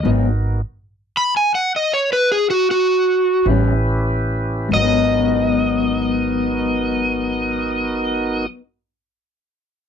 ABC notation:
X:1
M:12/8
L:1/16
Q:3/8=46
K:G#m
V:1 name="Electric slide guitar"
z6 b g f d c B G F F4 z6 | d24 |]
V:2 name="Tonewheel organ"
[B,DFA]4 z12 z2 [CE=GB]6 | [B,DFA]24 |]
V:3 name="Clean electric guitar"
[G,,F,B,D]2 z16 [=A,,=G,CE]2 z4 | [G,,F,B,D]24 |]
V:4 name="Upright bass" clef=bass
G,,,4 z12 z2 =A,,,6 | G,,,24 |]